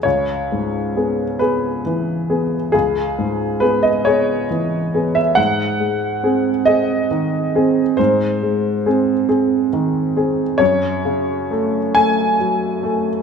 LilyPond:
<<
  \new Staff \with { instrumentName = "Upright piano" } { \time 6/8 \key cis \minor \tempo 4. = 46 cis''4. b'4. | gis'4 b'16 dis''16 cis''4~ cis''16 e''16 | fis''4. dis''4. | bis'4 r2 |
cis''4. gis''4. | }
  \new Staff \with { instrumentName = "Upright piano" } { \time 6/8 \key cis \minor cis,8 gis,8 <b gis'>8 <b gis'>8 e8 <b gis'>8 | cis,8 gis,8 <b gis'>8 <b gis'>8 e8 <b gis'>8 | gis,8 gis8 <bis gis'>8 <bis gis'>8 dis8 <bis gis'>8 | gis,8 gis8 <bis gis'>8 <bis gis'>8 dis8 <bis gis'>8 |
fis,8 cis8 <a a'>8 <a a'>8 fis8 <a a'>8 | }
>>